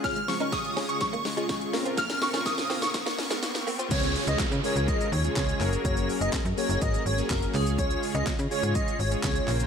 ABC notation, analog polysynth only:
X:1
M:4/4
L:1/16
Q:1/4=124
K:Db
V:1 name="Analog polysynth"
[A,DFA] z [A,DFA] [A,DFB] [A,DFA]4- [A,DFA] z2 [A,DFA]3 [CDFB]2 | z [CDFB]6 z8 z | [A,DFAd]4 z2 [A,DFAB]4 z [A,DFAd]3 [B,DGAB]2- | [B,DGAB]4 z2 [B,DGAB]4 z [B,DGAB]3 [A,DFAd]2- |
[A,DFAd]4 z2 [A,DFAd]4 z [A,DFAd]3 [CDFBc]2 |]